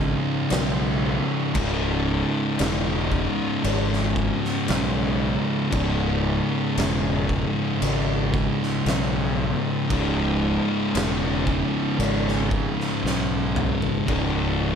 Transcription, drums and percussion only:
0.50 snare loud
0.50 crash medium
1.55 kick loud
1.55 crash medium
2.59 snare loud
2.59 crash medium
3.12 kick loud
3.64 crash medium
3.93 snare soft
4.16 kick medium
4.45 snare soft
4.68 snare loud
4.68 crash medium
5.72 kick loud
5.72 crash medium
6.77 snare loud
6.77 crash medium
7.29 kick loud
7.82 crash medium
8.34 kick loud
8.63 snare soft
8.86 snare loud
8.86 crash medium
9.90 kick loud
9.90 crash medium
10.95 snare loud
10.95 crash medium
11.47 kick loud
12.00 crash medium
12.28 snare soft
12.51 kick loud
12.81 snare soft
13.06 snare medium
13.56 mid tom loud
13.82 floor tom medium
14.08 kick loud
14.08 crash medium

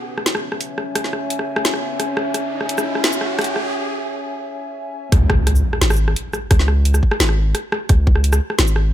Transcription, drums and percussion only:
0.18 cross-stick medium
0.26 snare loud
0.26 closed hi-hat medium
0.35 cross-stick medium
0.52 cross-stick medium
0.61 closed hi-hat medium
0.78 cross-stick medium
0.95 cross-stick medium
0.95 closed hi-hat medium
1.04 snare soft
1.13 cross-stick medium
1.30 closed hi-hat medium
1.39 cross-stick soft
1.56 cross-stick medium
1.65 snare loud
1.65 closed hi-hat medium
1.74 cross-stick medium
2.00 cross-stick medium
2.00 closed hi-hat medium
2.17 cross-stick medium
2.34 cross-stick soft
2.34 closed hi-hat medium
2.61 cross-stick medium
2.69 closed hi-hat medium
2.78 cross-stick medium
2.78 shaker medium
2.95 cross-stick medium
3.04 snare loud
3.04 closed hi-hat medium
3.13 shaker medium
3.21 cross-stick soft
3.39 cross-stick medium
3.39 closed hi-hat soft
3.41 closed hi-hat soft
3.44 closed hi-hat medium
3.56 cross-stick medium
5.12 kick loud
5.12 cross-stick medium
5.12 closed hi-hat medium
5.30 kick loud
5.30 cross-stick medium
5.47 cross-stick medium
5.47 closed hi-hat medium
5.56 shaker medium
5.73 cross-stick medium
5.82 snare loud
5.82 closed hi-hat medium
5.90 cross-stick medium
5.90 shaker medium
5.93 shaker medium
5.96 shaker soft
6.08 cross-stick medium
6.16 closed hi-hat medium
6.33 cross-stick medium
6.33 shaker soft
6.51 kick loud
6.51 cross-stick medium
6.51 closed hi-hat medium
6.59 snare soft
6.68 cross-stick medium
6.85 closed hi-hat medium
6.94 cross-stick medium
6.94 shaker medium
7.03 kick medium
7.11 cross-stick medium
7.20 snare loud
7.20 closed hi-hat medium
7.29 cross-stick medium
7.55 cross-stick medium
7.55 closed hi-hat medium
7.72 cross-stick medium
7.89 kick loud
7.89 cross-stick soft
7.89 closed hi-hat medium
8.07 kick loud
8.16 cross-stick soft
8.24 closed hi-hat medium
8.33 cross-stick medium
8.33 shaker medium
8.50 cross-stick medium
8.59 snare loud
8.59 closed hi-hat medium
8.67 shaker medium
8.76 cross-stick medium

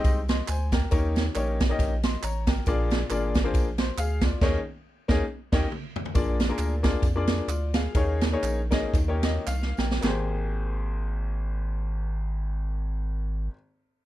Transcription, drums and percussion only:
0.04 kick loud
0.04 ride medium
0.04 tambourine medium
0.28 snare loud
0.28 ride medium
0.28 tambourine medium
0.48 clap loud
0.48 ride medium
0.48 tambourine loud
0.72 kick loud
0.72 snare loud
0.72 ride medium
0.72 tambourine medium
0.91 kick loud
0.91 ride medium
0.91 tambourine medium
1.16 snare loud
1.16 ride medium
1.16 tambourine medium
1.35 clap medium
1.35 ride medium
1.35 tambourine medium
1.60 kick loud
1.60 snare loud
1.60 ride medium
1.60 tambourine medium
1.79 kick loud
1.79 ride medium
1.79 tambourine medium
2.03 snare loud
2.03 ride medium
2.03 tambourine medium
2.23 clap loud
2.23 ride medium
2.23 tambourine loud
2.47 kick loud
2.47 snare loud
2.47 ride medium
2.47 tambourine medium
2.66 kick loud
2.66 ride medium
2.66 tambourine medium
2.91 snare loud
2.91 ride medium
2.91 tambourine medium
3.10 clap medium
3.10 ride medium
3.10 tambourine medium
3.34 kick medium
3.34 snare loud
3.34 ride medium
3.34 tambourine medium
3.54 kick loud
3.54 ride medium
3.54 tambourine medium
3.78 snare loud
3.78 ride medium
3.78 tambourine soft
3.98 clap loud
3.98 ride medium
3.98 tambourine loud
4.21 kick loud
4.21 snare loud
4.21 ride medium
4.21 tambourine medium
4.41 kick loud
4.41 snare loud
4.41 crash medium
5.09 kick loud
5.09 snare loud
5.52 kick loud
5.52 snare loud
5.52 crash medium
5.72 mid tom medium
5.96 floor tom loud
6.05 floor tom loud
6.15 kick loud
6.15 ride medium
6.15 tambourine medium
6.40 snare loud
6.40 ride medium
6.40 tambourine medium
6.58 clap medium
6.58 ride medium
6.58 tambourine medium
6.84 kick medium
6.84 snare loud
6.84 ride medium
6.84 tambourine medium
7.02 kick loud
7.02 ride medium
7.02 tambourine medium
7.27 snare loud
7.27 ride medium
7.27 tambourine medium
7.48 clap loud
7.48 ride medium
7.48 tambourine loud
7.74 snare loud
7.74 ride medium
7.74 tambourine medium
7.95 kick loud
7.95 ride medium
7.95 tambourine medium
8.21 snare loud
8.21 ride medium
8.21 tambourine medium
8.43 clap medium
8.43 ride medium
8.43 tambourine medium
8.71 kick medium
8.71 snare loud
8.71 ride medium
8.71 tambourine medium
8.94 kick loud
8.94 ride medium
8.94 tambourine medium
9.23 snare loud
9.23 ride medium
9.23 tambourine medium
9.47 snare medium
9.47 clap loud
9.47 tambourine loud
9.62 snare medium
9.77 snare loud
9.77 tambourine medium
9.91 snare loud
10.03 snare loud
10.03 clap medium

